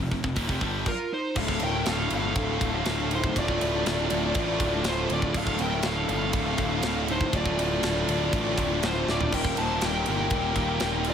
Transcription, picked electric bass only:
0.00 0.11 F1 medium
0.12 0.24 F1 medium
0.24 0.36 F1 medium
0.37 0.48 D#1 medium
0.49 0.61 F1 medium
0.61 0.85 G1 medium
1.36 1.58 D1 medium
1.62 1.83 D1 medium
1.86 2.08 D1 medium
2.11 2.32 G1 medium
2.36 2.58 D1 medium
2.61 2.82 D1 medium
2.86 3.29 D1 medium
3.36 3.57 D1 loud
3.62 3.82 D1 medium
3.86 4.07 D1 medium
4.10 4.31 D1 medium
4.35 4.56 A1 medium
4.59 4.81 D1 medium
4.84 5.05 D1 loud
5.09 5.31 D1 medium
5.35 5.56 D1 loud
5.59 5.80 D1 medium
5.83 6.05 D1 medium
6.09 6.30 G1 medium
6.34 6.55 D1 medium
6.58 6.80 D1 medium
6.82 7.25 D1 medium
7.33 7.54 D1 loud
7.57 7.79 D1 medium
7.82 8.03 D1 medium
8.08 8.29 D1 loud
8.33 8.54 A1 medium
8.58 8.79 D1 medium
8.82 9.03 D1 loud
9.07 9.28 D1 medium
9.33 9.53 D#1 loud
9.57 9.78 D#1 medium
9.83 10.04 D#1 medium
10.08 10.28 G1 loud
10.31 10.52 D#1 medium
10.56 10.77 D#1 medium
10.82 11.14 D#1 medium

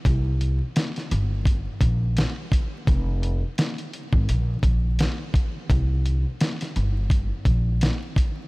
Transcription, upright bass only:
0.05 0.59 C2 loud
1.11 1.65 G1 loud
1.81 2.23 A#1 loud
2.88 3.41 F1 loud
4.13 4.25 G#1 medium
4.29 4.56 A#1 loud
4.63 5.06 A#1 medium
5.70 6.23 C2 loud
6.76 7.30 G1 loud
7.46 7.88 A#1 loud

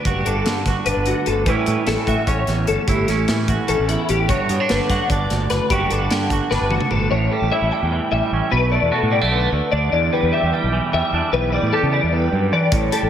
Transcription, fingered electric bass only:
0.05 0.22 F#1 medium
0.26 0.42 G1 medium
0.46 0.62 G2 medium
0.66 0.74 G1 medium
0.86 0.94 G1 medium
0.96 1.12 G1 medium
1.27 1.46 G1 medium
1.46 1.54 A1 medium
1.67 1.75 A2 medium
1.87 1.95 A1 medium
2.07 2.15 A2 medium
2.27 2.44 A1 medium
2.48 2.64 A1 medium
2.68 2.76 G1 medium
2.88 3.04 G1 medium
3.09 3.25 A1 loud
3.29 3.45 A2 medium
3.48 3.56 A1 medium
3.69 3.77 A1 medium
3.79 3.95 A1 medium
4.10 4.31 A1 medium
4.29 4.37 G1 medium
4.49 4.57 G2 medium
4.71 4.79 G1 medium
4.89 4.98 G2 medium
5.10 5.26 G1 medium
5.31 5.47 G1 medium
5.51 5.59 F#1 medium
5.70 5.86 F#1 medium
5.91 6.07 G1 medium
6.11 6.27 G2 medium
6.30 6.39 G1 medium
6.52 6.59 G1 medium
6.61 6.77 G1 medium
6.92 7.08 G1 medium
7.11 7.27 A1 medium
7.42 7.50 A1 medium
7.62 7.70 A1 loud
7.82 7.98 E2 medium
8.12 8.20 A1 medium
8.32 8.40 A1 medium
8.53 8.76 B1 loud
8.82 8.90 E2 medium
9.03 9.18 A2 loud
9.23 9.46 B1 medium
9.52 9.60 D2 loud
9.73 9.88 D2 medium
9.92 10.08 E2 medium
10.23 10.30 E2 medium
10.43 10.51 E2 loud
10.64 10.79 B1 medium
10.94 11.01 E2 medium
11.13 11.21 E2 medium
11.33 11.57 B1 loud
11.63 11.70 A2 medium
11.83 11.99 C#3 medium
12.03 12.27 E2 medium
12.32 12.53 G2 loud
12.53 12.69 E3 medium
12.72 12.89 A1 medium
13.03 13.10 A1 medium

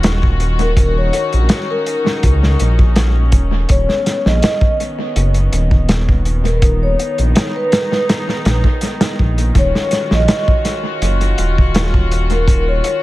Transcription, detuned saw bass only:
0.00 1.11 D#1 medium
1.34 1.49 A#1 medium
2.24 2.56 C#2 loud
2.61 3.34 A#1 medium
3.33 3.65 D#1 medium
3.70 3.87 D#1 loud
4.26 4.41 A#1 medium
5.16 5.49 F#1 loud
5.53 6.96 D#1 medium
7.19 7.34 A#1 medium
8.46 8.62 A#1 medium
9.20 9.52 A#1 medium
9.55 9.72 D#1 loud
10.12 10.27 A#1 medium
11.02 11.34 F#1 loud
11.39 12.81 D#1 medium

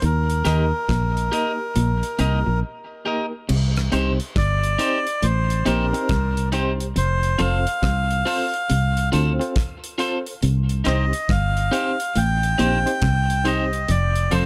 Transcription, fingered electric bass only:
0.03 0.42 D#2 loud
0.46 0.71 D#2 loud
0.90 1.29 A#1 medium
1.77 2.01 A#1 medium
2.20 2.45 C2 medium
2.47 2.62 A#1 medium
3.50 3.89 C2 loud
3.93 4.18 C2 medium
4.36 4.76 G1 medium
5.23 5.63 A1 loud
5.67 5.92 A#1 medium
6.10 6.92 C2 loud
6.97 7.36 F1 loud
7.41 7.65 F1 loud
7.83 8.22 C2 medium
8.71 9.10 C2 medium
9.14 9.38 D2 medium
10.43 10.82 C2 loud
10.87 11.12 C2 loud
11.30 11.69 G1 medium
12.17 12.56 A1 medium
12.60 12.84 A#1 medium
13.03 13.85 C2 loud
13.89 14.28 F1 loud
14.33 14.46 F1 loud

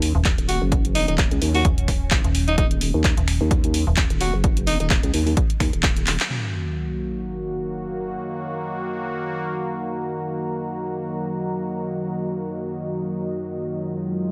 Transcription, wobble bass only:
0.00 0.13 D#2 loud
0.38 0.59 D#1 loud
0.62 1.06 F#1 medium
1.08 1.29 D#1 loud
1.31 1.40 C#2 loud
1.42 1.63 D#2 loud
2.11 2.22 F#1 loud
2.58 2.92 D#1 loud
2.94 3.15 D#2 loud
3.41 3.85 D#2 loud
4.10 4.32 D#1 loud
4.33 4.78 F#1 medium
4.80 5.01 D#1 medium
5.03 5.12 C#2 loud
5.14 5.35 D#2 loud
5.60 5.71 D#2 loud
5.73 6.18 D#1 loud

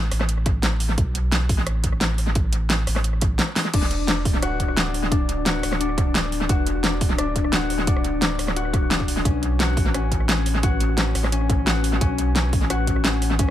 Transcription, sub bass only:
0.00 0.10 A1 medium
0.12 0.97 A1 medium
0.98 1.51 B1 loud
1.49 2.86 A1 medium
2.88 3.39 A1 medium
3.74 4.27 E1 loud
4.25 5.62 D1 medium
5.64 6.48 D1 medium
6.50 7.03 E1 loud
7.01 8.38 D1 medium
8.39 9.24 D1 medium
9.25 9.79 B1 loud
9.77 11.14 A1 medium
11.15 12.00 A1 medium
12.01 12.54 B1 loud
12.53 13.51 A1 medium

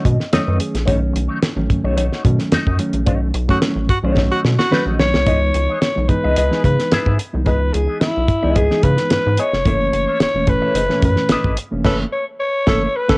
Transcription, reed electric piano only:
0.00 0.17 D#3 loud
0.00 0.14 F#3 medium
0.00 0.14 A3 medium
0.00 0.14 C#4 loud
0.05 0.31 D#5 medium
0.32 0.73 D#3 medium
0.32 0.73 F#3 medium
0.32 0.74 A3 medium
0.32 0.74 C#4 medium
0.32 0.46 C#5 medium
0.47 0.59 B4 medium
0.60 0.85 G#4 medium
0.87 1.38 D#3 medium
0.87 1.38 F#3 medium
0.87 1.38 A3 medium
0.87 1.38 C#4 loud
1.56 2.06 D#3 medium
1.56 2.06 F#3 medium
1.56 2.07 A3 medium
1.56 2.07 C#4 medium
2.25 2.65 D#3 medium
2.25 2.65 F#3 medium
2.25 2.66 A3 medium
2.25 2.66 C#4 medium
2.79 3.29 D#3 medium
2.79 3.30 F#3 medium
2.79 3.30 A3 medium
2.79 3.30 C#4 medium
3.48 3.88 D#3 medium
3.48 3.88 F#3 medium
3.48 3.88 A3 medium
3.48 3.88 C#4 loud
4.03 4.53 D#3 medium
4.03 4.53 F#3 medium
4.03 4.54 A3 medium
4.03 4.54 C#4 loud
4.71 5.12 D#3 medium
4.71 5.12 F#3 medium
4.71 5.12 A3 medium
4.71 5.12 C#4 medium
5.25 5.76 E3 medium
5.25 5.77 G#3 medium
5.25 5.77 B3 medium
5.25 5.77 D#4 medium
5.95 6.05 E3 medium
5.95 6.05 G#3 medium
5.95 6.06 B3 medium
5.95 6.06 D#4 medium
6.08 6.39 E3 medium
6.08 6.39 G#3 medium
6.08 6.39 B3 medium
6.08 6.39 D#4 medium
6.50 7.10 E3 medium
6.50 7.10 G#3 medium
6.50 7.11 B3 medium
6.50 7.11 D#4 medium
7.33 8.13 E3 medium
7.33 8.13 G#3 medium
7.33 8.13 B3 medium
7.33 8.13 D#4 medium
8.43 8.63 E3 medium
8.43 8.63 G#3 medium
8.43 8.63 B3 medium
8.43 8.63 D#4 medium
8.70 9.40 E3 medium
8.70 9.40 G#3 medium
8.70 9.40 B3 medium
8.70 9.40 D#4 medium
9.65 10.16 E3 medium
9.65 10.16 A3 medium
9.65 10.16 A#3 medium
9.65 10.16 C#4 medium
10.35 10.45 E3 medium
10.35 10.45 A3 medium
10.35 10.45 A#3 medium
10.35 10.45 C#4 medium
10.47 10.78 A#2 medium
10.47 10.78 E3 medium
10.47 10.78 A3 medium
10.47 10.78 C#4 medium
10.89 11.50 A#2 medium
10.89 11.49 E3 loud
10.89 11.50 A3 medium
10.89 11.50 C#4 loud
11.71 11.83 E3 medium
11.71 11.83 A3 medium
11.71 11.83 A#3 medium
11.71 11.84 C#4 medium
11.84 12.04 E3 loud
11.84 12.04 A3 medium
11.84 12.04 A#3 loud
11.84 12.04 C#4 medium
12.67 12.86 E3 loud
12.67 12.86 A3 loud
12.67 12.87 A#3 medium
12.67 12.87 C#4 loud
13.09 13.18 E3 loud
13.09 13.18 A3 loud
13.09 13.18 A#3 loud
13.09 13.18 C#4 loud

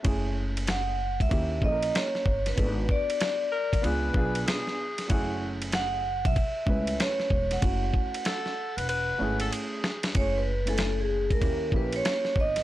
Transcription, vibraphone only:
0.70 1.17 F#5 medium
1.22 1.65 E5 medium
1.64 1.93 D#5 medium
1.96 2.43 C#5 medium
2.48 2.87 B4 medium
2.91 3.81 D5 medium
5.74 6.27 F#5 loud
6.26 6.96 E5 medium
7.01 7.53 C#5 medium
7.53 9.49 F#5 medium
10.17 10.37 C#5 medium
10.38 10.66 B4 medium
10.68 10.97 A4 medium
11.01 11.29 G#4 medium
11.32 11.71 A#4 medium
11.76 11.93 B4 medium
11.96 12.39 C#5 medium
12.40 12.59 D#5 loud
12.60 12.63 B4 medium

